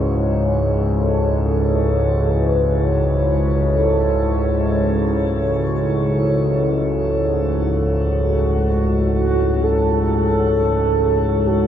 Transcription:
Already playing: C#2 G#2 E4 F#4 G#4 C#5
0.98 A4
1.40 A4
2.29 B4
3.02 A4
3.68 A4
8.24 F#4
9.15 F#4
9.62 A4
11.47 F#4

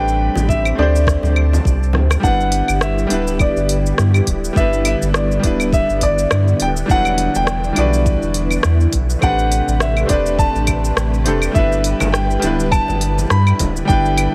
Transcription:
Already playing: A1 G3 A3 C4 D4 G4 B4 G5 B5 D6
0.08 cabasa
0.35 A1, high conga, cabasa
0.49 E5, kick, cabasa
0.65 cabasa, claves
0.75 D2 A3 C4 D4 D5, high conga
0.80 G4 C5
0.96 cabasa
1.07 A5, kick, cross-stick, cabasa
1.23 D2, low conga, cabasa
1.36 claves
1.53 high conga, low conga, cabasa
1.65 C2, kick, cabasa
1.83 cabasa
1.93 D2, cross-stick, low conga
2.10 cross-stick, high conga, cabasa, claves
2.20 G1 G3 B3 D4 F#5, kick
2.24 D3 G3 B3 E4 G4 B4, cabasa
2.41 cabasa
2.52 open hi-hat
2.68 G1, cabasa, claves
2.81 E5, cross-stick, cabasa
2.98 cabasa
3.07 D1 G3 B3 D4, open hi-hat
3.12 E4 B4
3.27 cabasa
3.39 D5, kick, cabasa, claves
3.56 G1, cabasa
3.69 open hi-hat
3.86 cabasa
3.98 G2, cross-stick, cabasa
4.14 cabasa, claves
4.27 D1, kick, open hi-hat
4.44 cabasa
4.53 G1 G3 B3 D4, kick
4.57 E4 B4 E5, cabasa
4.73 cabasa
4.85 E5, open hi-hat, claves
5.02 G1, cabasa
5.14 D5, cross-stick, cabasa
5.32 cabasa
5.40 D1 G3 B3 D4, kick, open hi-hat
5.45 E4 B4
5.60 cabasa, claves
5.73 E5, kick, cabasa
5.89 G1, cabasa
6.01 D5, kick, open hi-hat
6.19 cabasa
6.31 G2, cross-stick, cabasa, claves
6.48 cabasa
6.60 D1 G5, open hi-hat
6.77 cabasa
6.86 E1 G3 D4 E4, kick
6.90 E3 F#3 E4 B4 F#5, cabasa
7.05 cabasa, claves
7.18 open hi-hat
7.35 E1 G5, cabasa
7.47 cross-stick, cabasa
7.64 cabasa
7.73 G3 D4 E4, open hi-hat, claves
7.77 B1 F#4 B4 D5
7.93 cabasa
8.06 kick, cabasa
8.22 E1, cabasa
8.34 open hi-hat
8.51 cabasa, claves
8.63 E2, cross-stick, cabasa
8.81 cabasa
8.93 B1, kick, open hi-hat
9.10 cabasa
9.19 A1 A3 C4 D4 B4, kick, cabasa, claves
9.23 C3 A3 G4 B4 F#5
9.39 cabasa
9.52 open hi-hat
9.68 A1, cabasa
9.80 E5, cross-stick, cabasa
9.97 cabasa, claves
10.06 A3 C4 D4 D5, open hi-hat
10.10 E1 G4 B4, kick
10.26 cabasa
10.39 A5, kick, cabasa
10.55 A1, cabasa
10.67 kick, open hi-hat, claves
10.85 cabasa
10.97 A1, cross-stick, cabasa
11.14 cabasa
11.24 E1 A3 C4 D4 G4 A4, open hi-hat
11.42 cabasa, claves
11.51 G1 G3 B3 D4 E5, kick
11.55 D3 G3 E4 B4, cabasa
11.72 cabasa
11.84 open hi-hat
12.00 G1, high conga, cabasa, claves
12.12 G5, cross-stick, cabasa
12.31 cabasa
12.40 D1 G3 B3 D4, open hi-hat
12.44 E4 B4, high conga
12.60 cabasa
12.72 A5, kick, cabasa, claves
12.88 G1, high bongo, low conga, cabasa
13.01 open hi-hat
13.18 low conga, cabasa
13.30 G2 B5, cross-stick, cabasa
13.47 cabasa, claves
13.59 D1, kick, open hi-hat, high conga, low conga
13.77 cabasa
13.85 G1 G3 B3 D4 A4 G5, kick
13.90 E4 B4, cabasa
14.06 cabasa
14.18 open hi-hat, claves

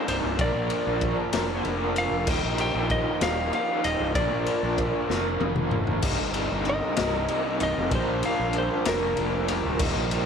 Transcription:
Already playing: C2 G2 C3 G3 A#3 C4 D#4 A#4
0.08 C1 C5, ride
0.23 C1
0.38 A#1 A#2 F3 A#3 D4 F4 A#4 D5, kick, ride
0.54 A#1
0.70 ride
0.87 A#1
1.01 kick, ride
1.32 F1 A#2 F3 A#3 D4 F4 A#4, snare, ride
1.65 F1, ride
1.96 F5, ride
2.11 F1
2.26 D#1 D#2 A#2 D#3 F3 A#3 D#4 G4 G5, kick, crash
2.43 A#1
2.58 G5, ride
2.75 A#1
2.90 D#5, kick, ride
3.21 D#1 D#2 A#2 D#3 F3 A#3 D#4 F5, snare, ride
3.53 F5, ride
3.84 D#1 D#5, ride
4.00 C1
4.14 A#1 A#2 F3 A#3 D4 F4 A#4 D5, kick, ride
4.32 A#1
4.46 ride
4.63 A#1
4.78 kick, ride
5.09 F1 A#2 F3 A#3 D4 F4 A#4, snare
5.41 F1, high tom
5.56 mid tom
5.71 mid tom
5.87 F1, floor tom
6.02 C1 C2 G2 C3 G3 A#3 D#4, kick, crash
6.06 G3 C4 A#4
6.20 G1
6.34 ride
6.52 G1
6.65 ride
6.69 D#5
6.96 C1 C2 G2 C3 G3 A#3 D#4, snare, ride
7.28 ride
7.60 C1 D#5, ride
7.78 F1
7.91 A#1 A#2 F3 A#3 D4 F4 A#4 C5, kick, ride
8.09 A#1
8.23 F5, ride
8.39 A#1
8.53 ride
8.58 C5
8.85 F1 A#2 F3 A#3 D4 F4 A#4, snare, ride
9.17 F1, ride
9.48 ride
9.65 D1
9.78 D#1 D#2 A#2 D#3 D#4 G4, kick, crash
9.82 F3 A#3 D#4
9.96 A#1
10.11 ride

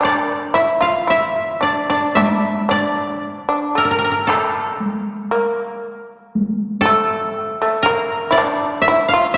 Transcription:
Already playing: A#4
0.01 D4, taiko rim
0.05 D5
0.38 A#4
0.54 E4 E5
0.81 F4 F5
1.07 E4 E5
1.61 D4 D5
1.90 D4 D5
2.15 E4 E5, taiko high
2.69 D4 D5
3.49 D4
3.75 A3 A#4
3.85 A#3 A#4
3.91 A#4
3.99 A#4
4.04 A#4
4.11 A#4
4.27 A3 A4, taiko rim
4.81 taiko high
5.31 A#3
6.35 taiko high
6.81 A4
6.85 A3
7.48 F4
7.62 A3
7.83 A#3 A#4
8.31 E4 D5
8.37 D4, taiko rim
8.82 E5
8.88 E4
9.08 F5
9.13 F4
9.34 E5

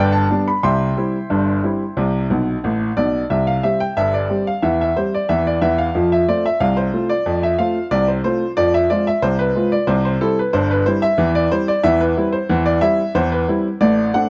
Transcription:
Already playing: G1 G2 B4 D5 G5
0.12 A5
0.30 G3 B3 D4
0.48 B5
0.63 C2 C3 E5 G5 C6
0.97 G3 C4 E4
1.30 G1 G2
1.63 G3 C4 E4
1.97 C2 C3
2.30 B1 B2
2.64 A1 A2
2.97 B1 B2 D5
3.30 C2 C3 E5
3.47 F5
3.63 G3 C4 G4 E5
3.80 G5
3.97 G1 G2 E5
4.14 D5
4.29 G3 C4 G4
4.47 F5
4.62 E2 E3 E5
4.81 E5
4.97 G3 C4 G4 C5
5.14 D5
5.29 E2 E3 E5
5.47 D5
5.61 E2 E3 E5
5.78 F5
5.95 F2 F3
6.12 E5
6.28 A3 C4 F4 D5
6.46 E5
6.60 C2 C3 F5
6.77 C5
6.93 A3 C4 F4
7.09 D5
7.26 F2 F3
7.43 E5
7.59 A3 C4 F4 F5
7.91 C2 C3 D5
8.08 C5
8.24 A3 C4 F4 C5
8.57 F2 F3 D5
8.74 E5
8.90 G#3 C4 F4 D5
9.07 E5
9.22 C2 C3 C5
9.39 B4
9.55 G#3 C4 F4
9.72 D5
9.87 C2 C3 C5
10.05 C5
10.21 G3 C4 E4 A4
10.39 B4
10.53 G1 G2 C5
10.71 B4
10.86 G3 C4 E4 C5
11.02 E5
11.18 E2 E3
11.35 D5
11.52 G3 C4 E4 C5
11.68 D5
11.83 E2 E3 E5
12.01 B4
12.17 G3 C4 E4
12.32 C5
12.49 E2 E3
12.66 D5
12.81 G3 C4 E4 E5
13.15 E2 E3 C5
13.32 B4
13.48 G3 C4 E4
13.81 A1 A2 D5
14.14 A3 C4 D4 F#5

